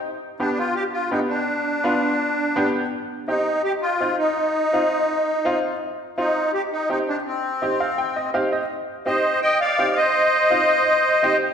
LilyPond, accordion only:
\new Staff \with { instrumentName = "Accordion" } { \time 4/4 \key c \minor \tempo 4 = 166 r4 d'8 f'8 g'8 f'8 ees'8 d'8~ | d'2.~ d'8 r8 | r4 ees'4 g'8 f'4 ees'8~ | ees'2.~ ees'8 r8 |
r4 ees'4 g'8 ees'8 ees'8 d'8 | c'2. r4 | r4 <c'' ees''>4 <ees'' g''>8 <d'' f''>4 <c'' ees''>8~ | <c'' ees''>2.~ <c'' ees''>8 r8 | }